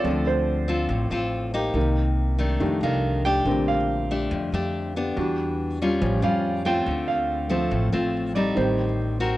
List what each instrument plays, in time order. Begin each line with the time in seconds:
Already playing: nylon-string guitar C4 F4 A4, grand piano D5
0.04 upright bass D2, nylon-string guitar D3, grand piano F3 A3 C4
0.27 grand piano C5
0.68 nylon-string guitar C4 F4 A4
0.89 upright bass A1, nylon-string guitar A2
1.10 upright bass A1, nylon-string guitar C4 F4 A4
1.54 nylon-string guitar A#3 D#4 G4
1.74 upright bass C2, nylon-string guitar C3, grand piano D#3 A#3
2.38 nylon-string guitar D#3 A3 D4
2.60 upright bass F2, nylon-string guitar F2, grand piano D#3 G3 A3 D4
2.81 upright bass C2, nylon-string guitar D#3 A3 D4, grand piano F5
3.25 nylon-string guitar A3 D4 G4, grand piano G5
3.45 upright bass A#1, nylon-string guitar A#2, grand piano D3 G3 A3 C4
3.68 grand piano F5
4.11 nylon-string guitar A3 D4 G4
4.31 upright bass F2, nylon-string guitar F2
4.52 upright bass F2, nylon-string guitar A3 D4 G4
4.96 nylon-string guitar B3 D4 G4
5.16 upright bass E2, nylon-string guitar E3, grand piano G3 D4 F#4
5.82 nylon-string guitar G3 C#4 F4
6.01 upright bass A1, nylon-string guitar A2, grand piano F3 G3 C#4
6.22 upright bass F2, nylon-string guitar G3 C#4 F4, grand piano F5
6.65 nylon-string guitar A3 C4 F4, grand piano G5
6.86 upright bass D2, nylon-string guitar D3
7.08 grand piano F5
7.49 grand piano F3 A3 C4, nylon-string guitar A3 C4 F4
7.71 upright bass A1, nylon-string guitar A2
7.92 upright bass A1, nylon-string guitar A3 C4 F4
8.35 nylon-string guitar G3 C4 D#4, grand piano D5
8.55 upright bass A1, nylon-string guitar A2, grand piano D#3 G3 C4 C5
9.20 nylon-string guitar C4 F#4 A#4